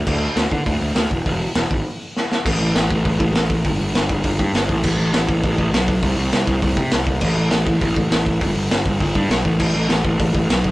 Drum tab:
CC |x-------|--------|x-------|--------|
HH |--o-o-o-|o-o-----|--o-o-o-|o-o-o-o-|
SD |--o---o-|--o---oo|--o---o-|--o---o-|
BD |o--oo--o|o--o----|o--ooo-o|o--ooo-o|

CC |x-------|--------|x-------|--------|
HH |--o-o-o-|o-o-o-o-|--o-o-o-|o-o-o-o-|
SD |--o---o-|--o---o-|--o---o-|--o---o-|
BD |o--ooo-o|o--ooo-o|o--ooo-o|o--ooo-o|

CC |x-------|
HH |--o-o-o-|
SD |--o---o-|
BD |o--ooo-o|